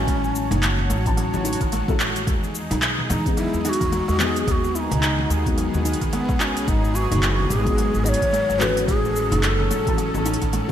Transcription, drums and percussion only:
0.07 kick loud
0.07 open hi-hat medium
0.07 cabasa soft
0.24 high conga soft
0.24 cabasa soft
0.35 cabasa medium
0.51 open hi-hat soft
0.51 low conga loud
0.51 cabasa soft
0.63 clap medium
0.63 open hi-hat medium
0.63 cabasa soft
0.79 high conga medium
0.90 open hi-hat soft
0.90 cabasa medium
1.06 kick loud
1.06 open hi-hat soft
1.06 cabasa soft
1.17 open hi-hat medium
1.17 cabasa soft
1.34 high bongo medium
1.34 high conga medium
1.34 cabasa soft
1.45 open hi-hat soft
1.45 cabasa medium
1.53 open hi-hat medium
1.61 kick medium
1.61 open hi-hat soft
1.61 cabasa soft
1.72 open hi-hat medium
1.72 cabasa soft
1.88 kick loud
1.88 high conga medium
1.88 cabasa soft
2.00 clap medium
2.00 cabasa medium
2.16 open hi-hat soft
2.16 cabasa soft
2.27 kick loud
2.27 open hi-hat medium
2.27 cabasa soft
2.43 high conga soft
2.43 cabasa soft
2.55 high bongo soft
2.55 cabasa medium
2.71 open hi-hat soft
2.71 low conga medium
2.71 cabasa soft
2.82 clap medium
2.82 open hi-hat medium
2.82 cabasa soft
2.99 high conga medium
3.10 open hi-hat soft
3.10 low conga medium
3.10 cabasa medium
3.26 kick loud
3.26 open hi-hat soft
3.26 cabasa soft
3.37 open hi-hat medium
3.37 cabasa soft
3.54 cabasa soft
3.65 open hi-hat soft
3.65 high conga soft
3.65 cabasa medium
3.73 open hi-hat medium
3.81 kick medium
3.81 open hi-hat soft
3.81 cabasa soft
3.92 open hi-hat medium
3.92 cabasa soft
4.09 cabasa soft
4.20 clap medium
4.20 high conga medium
4.20 cabasa medium
4.36 open hi-hat soft
4.36 cabasa soft
4.47 kick loud
4.47 open hi-hat medium
4.47 cabasa medium
4.64 high conga soft
4.64 cabasa soft
4.75 high bongo soft
4.75 cabasa medium
4.91 open hi-hat soft
4.91 low conga medium
4.91 cabasa soft
5.03 clap medium
5.03 open hi-hat medium
5.03 cabasa soft
5.19 high conga medium
5.30 open hi-hat soft
5.30 cabasa medium
5.46 kick loud
5.46 open hi-hat soft
5.46 cabasa soft
5.58 open hi-hat medium
5.58 cabasa soft
5.74 high bongo medium
5.74 high conga medium
5.74 cabasa soft
5.85 open hi-hat soft
5.85 cabasa medium
5.93 open hi-hat soft
6.01 kick medium
6.01 open hi-hat soft
6.01 cabasa soft
6.13 open hi-hat medium
6.13 cabasa soft
6.29 kick loud
6.29 high conga medium
6.29 cabasa soft
6.40 clap medium
6.40 cabasa medium
6.57 open hi-hat soft
6.57 cabasa soft
6.68 kick loud
6.68 open hi-hat medium
6.68 cabasa soft
6.84 high conga soft
6.84 cabasa soft
6.95 high bongo soft
6.95 cabasa medium
7.12 open hi-hat soft
7.12 low conga medium
7.12 cabasa soft
7.23 clap medium
7.23 open hi-hat medium
7.23 cabasa soft
7.40 high conga medium
7.50 open hi-hat soft
7.50 low conga medium
7.50 cabasa medium
7.67 kick loud
7.67 open hi-hat soft
7.67 cabasa soft
7.78 open hi-hat medium
7.78 cabasa soft
7.94 cabasa soft
8.06 open hi-hat soft
8.06 high conga soft
8.06 cabasa medium
8.14 open hi-hat medium
8.22 kick medium
8.22 open hi-hat soft
8.22 cabasa soft
8.34 open hi-hat medium
8.34 cabasa soft
8.50 cabasa soft
8.61 clap medium
8.61 high conga medium
8.61 cabasa medium
8.77 open hi-hat soft
8.77 cabasa soft
8.88 kick loud
8.88 open hi-hat medium
8.88 cabasa soft
9.05 high conga soft
9.05 cabasa soft
9.16 cabasa medium
9.31 open hi-hat soft
9.31 low conga medium
9.31 cabasa soft
9.43 clap medium
9.43 open hi-hat medium
9.43 cabasa soft
9.60 high conga medium
9.71 open hi-hat soft
9.71 cabasa medium
9.87 kick loud
9.87 open hi-hat soft
9.87 cabasa soft
9.98 open hi-hat medium
9.98 cabasa soft
10.14 high bongo medium
10.14 high conga medium
10.14 cabasa soft
10.26 open hi-hat soft
10.26 cabasa medium
10.34 open hi-hat medium
10.42 kick medium
10.42 open hi-hat soft
10.42 cabasa soft
10.53 open hi-hat medium
10.53 cabasa soft

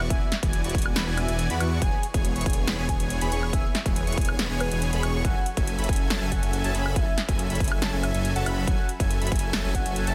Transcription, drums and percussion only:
0.00 high woodblock medium
0.10 kick loud
0.10 closed hi-hat medium
0.32 snare medium
0.32 closed hi-hat medium
0.43 kick loud
0.43 closed hi-hat medium
0.53 closed hi-hat medium
0.64 closed hi-hat medium
0.70 closed hi-hat medium
0.75 kick loud
0.75 closed hi-hat medium
0.78 closed hi-hat medium
0.82 closed hi-hat medium
0.82 high woodblock medium
0.96 snare loud
0.96 closed hi-hat medium
1.18 closed hi-hat medium
1.18 high woodblock medium
1.28 closed hi-hat medium
1.39 closed hi-hat medium
1.50 closed hi-hat medium
1.60 closed hi-hat medium
1.60 high woodblock medium
1.82 kick loud
1.82 closed hi-hat medium
2.03 closed hi-hat medium
2.14 kick loud
2.14 closed hi-hat medium
2.25 closed hi-hat medium
2.36 closed hi-hat medium
2.41 closed hi-hat medium
2.46 kick loud
2.46 closed hi-hat medium
2.50 closed hi-hat medium
2.53 closed hi-hat medium
2.68 snare loud
2.68 closed hi-hat medium
2.89 kick medium
2.89 closed hi-hat medium
3.00 closed hi-hat medium
3.10 closed hi-hat medium
3.21 closed hi-hat medium
3.32 closed hi-hat medium
3.43 high woodblock medium
3.53 kick loud
3.53 closed hi-hat medium
3.75 snare medium
3.75 closed hi-hat medium
3.86 kick loud
3.86 closed hi-hat medium
3.96 closed hi-hat medium
4.07 closed hi-hat soft
4.12 closed hi-hat medium
4.18 kick loud
4.18 closed hi-hat soft
4.21 closed hi-hat medium
4.25 closed hi-hat medium
4.25 high woodblock medium
4.39 snare loud
4.39 closed hi-hat medium
4.60 closed hi-hat medium
4.60 high woodblock medium
4.71 closed hi-hat medium
4.82 closed hi-hat medium
4.93 closed hi-hat medium
5.03 closed hi-hat medium
5.03 high woodblock medium
5.25 kick loud
5.25 closed hi-hat medium
5.46 closed hi-hat medium
5.57 kick loud
5.57 closed hi-hat medium
5.67 closed hi-hat medium
5.79 closed hi-hat soft
5.84 closed hi-hat medium
5.89 kick loud
5.89 closed hi-hat soft
5.93 closed hi-hat medium
5.96 closed hi-hat medium
6.10 snare loud
6.10 closed hi-hat medium
6.32 kick medium
6.32 closed hi-hat medium
6.43 closed hi-hat medium
6.53 closed hi-hat medium
6.64 closed hi-hat medium
6.75 closed hi-hat medium
6.86 high woodblock medium
6.96 kick loud
6.96 closed hi-hat medium
7.18 snare medium
7.18 closed hi-hat medium
7.29 kick loud
7.29 closed hi-hat medium
7.39 closed hi-hat medium
7.50 closed hi-hat soft
7.55 closed hi-hat medium
7.60 kick loud
7.60 closed hi-hat soft
7.64 closed hi-hat medium
7.68 closed hi-hat medium
7.68 high woodblock medium
7.82 snare loud
7.82 closed hi-hat medium
8.03 closed hi-hat medium
8.03 high woodblock medium
8.14 closed hi-hat medium
8.25 closed hi-hat medium
8.36 closed hi-hat medium
8.46 closed hi-hat medium
8.46 high woodblock medium
8.67 kick loud
8.67 closed hi-hat medium
8.89 closed hi-hat medium
9.00 kick loud
9.00 closed hi-hat medium
9.11 closed hi-hat medium
9.22 closed hi-hat soft
9.27 closed hi-hat medium
9.32 kick loud
9.32 closed hi-hat soft
9.36 closed hi-hat medium
9.39 closed hi-hat medium
9.53 snare loud
9.53 closed hi-hat medium
9.75 kick medium
9.75 closed hi-hat medium
9.86 closed hi-hat medium
9.96 closed hi-hat medium
10.07 closed hi-hat medium

